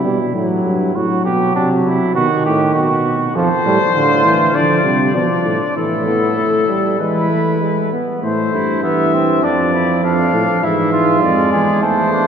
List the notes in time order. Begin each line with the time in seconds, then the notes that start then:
Already playing: E4
0.05 B2 G3
0.35 A2 F#3 E4
0.65 G2
0.95 A2 F#3 F#4
1.25 B2 G4
1.55 C3 D4
1.85 C3 E4
2.15 B2 D#3 F#4
2.45 A2 G4
2.75 B2 F#4
3.35 F2 F3 A4 C5
3.65 A2 G3
3.95 A2 D3 F4
4.25 E3
4.54 D3 F3 D5
4.84 C3 G3
5.14 B2 F3 D4 D5
5.45 A2
5.76 A2 E3 E4 A4
6.06 B3
6.37 A3
6.68 G3
6.99 E3 G#3 E4 B4
7.30 A3
7.61 G#3
7.92 B3
8.23 A2 A3 C5
8.53 G2 E4
8.83 E3 B3 E5
9.13 C4
9.43 F2 F3 D4 D5
9.74 E4
10.03 F2 D4 F5
10.34 A2
10.63 G#2 E3 E4 E5
10.92 F4
11.23 F2 G#3 D5
11.52 E2 G#4
11.82 E2 A3 A4 C5
12.12 D4